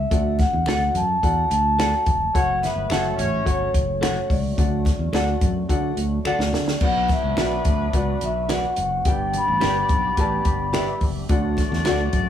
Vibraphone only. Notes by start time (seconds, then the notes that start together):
Already playing: E5
0.39 F#5
0.69 F#5
0.96 A5
1.52 A5
2.36 F#5
2.63 E5
3.48 C#5
4.31 D5
6.27 D5
6.85 F#5
7.12 E5
7.97 D5
8.24 E5
8.54 F#5
9.09 G5
9.38 B5